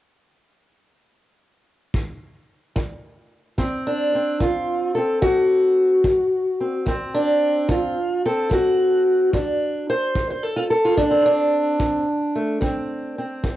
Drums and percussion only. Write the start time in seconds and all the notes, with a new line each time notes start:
1.94 kick
2.76 kick
3.58 kick
4.40 kick
5.22 kick
6.04 kick
6.87 kick
7.69 kick
8.51 kick
9.33 kick
10.15 kick
10.98 kick
11.80 kick
12.62 kick
13.44 kick